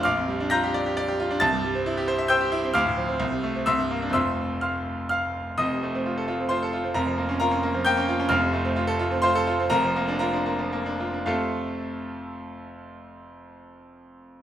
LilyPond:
\new Staff \with { instrumentName = "Grand piano" } { \time 3/4 \key f \major \tempo 4 = 128 << { <f'' d''' f'''>4 <bes'' g''' bes'''>2 | <a'' a'''>2 <g'' e''' g'''>4 | <f'' d''' f'''>2 <e'' c''' e'''>4 | <e'' c''' e'''>4 <f'' c''' f'''>4 <f'' f'''>4 |
<ees'' ees'''>2 <c'' c'''>4 | <bes' bes''>4 <bes' bes''>4 <g'' g'''>4 | <f'' f'''>2 <c'' c'''>4 | <bes' bes''>4 <bes' bes''>4 r4 |
<f, c a c' f' a' f''>2.~ | <f, c a c' f' a' f''>2. | } \\ { bes,,16 f,16 g16 d'16 f'16 g'16 d''16 g'16 d''16 g'16 f'16 d'16 | c,16 g,16 g16 c'16 e'16 g'16 c''16 e''16 c''16 g'16 e'16 c'16 | d,16 a,16 f16 c'16 c,16 c16 a16 c'16 c,16 g,16 bes16 d'16 | <f,, f, a c' f'>2. |
<f,, f,>16 c16 a16 c'16 f'16 a'16 f'16 c'16 f'16 a'16 f'16 c'16 | <f,, f,>16 f16 bes16 des'16 f'16 des'16 bes16 f16 bes16 des'16 f'16 des'16 | <f,, f,>16 c16 a16 c'16 f'16 a'16 f'16 c'16 f'16 a'16 f'16 c'16 | <f,, f,>16 f16 bes16 d'16 f'16 d'16 bes16 f16 bes16 d'16 f'16 d'16 |
r2. | r2. | } >> }